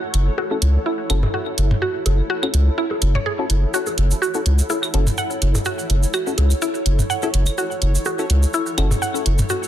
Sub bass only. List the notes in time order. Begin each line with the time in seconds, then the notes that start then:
0.14 F#1
0.62 C#2
1.10 F#1
1.58 F#1
2.06 F#1
2.54 C#2
3.02 F#1
3.50 F#1
3.98 F#1
4.46 C#2
4.94 F#1
5.42 F#1
5.90 F#1
6.38 C#2
6.86 F#1
7.34 F#1
7.82 F#1
8.30 C#2
8.78 F#1
9.26 F#1